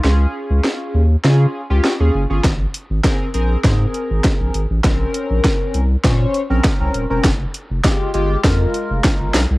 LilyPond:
<<
  \new Staff \with { instrumentName = "Analog polysynth" } { \time 4/4 \key des \lydian \tempo 4 = 100 <des' f' aes'>4. r8 <des' f' aes'>8 r16 <des' f' g'>8 <des' f' aes'>8 <des' f' aes'>16 | r4 <c' aes' bes'>8 <c' aes' bes'>8 <aes' bes'>4. r8 | <c' des' bes'>4. r8 <des' c'' des''>8 r16 <c' des' bes'>8 <c' des' bes'>8 <c' des' bes'>16 | r4 <aes f' g'>8 <aes f' g'>8 <aes f' bes'>4. r8 | }
  \new Staff \with { instrumentName = "Sub bass" } { \clef bass \time 4/4 \key des \lydian des,8 r16 des,16 r8 ees,8 des8 r16 des,16 r16 ees,16 ges,,16 g,,16 | aes,,8 r16 aes,,16 r8 bes,,8 aes,8 r16 aes,,16 r16 bes,,16 aes,,16 a,,16 | bes,,8 r16 bes,,16 r8 c,8 bes,8 r16 bes,,16 r16 c,16 ees,,16 e,,16 | f,,8 r16 f,,16 r8 g,,8 f,8 r16 f,,16 r16 g,,16 b,,16 c,16 | }
  \new DrumStaff \with { instrumentName = "Drums" } \drummode { \time 4/4 sn4 sn4 sn4 sn4 | <hh bd sn>8 hh8 <hh bd sn>8 hh8 <hh bd sn>8 hh8 <hh bd sn>8 hh8 | <hh bd sn>8 hh8 <hh bd sn>8 hh8 <hh bd sn>8 hh8 <hh bd sn>8 hh8 | <hh bd sn>8 hh8 <hh bd sn>8 hh8 <hh bd sn>8 hh8 <hh bd sn>8 <hh sn>8 | }
>>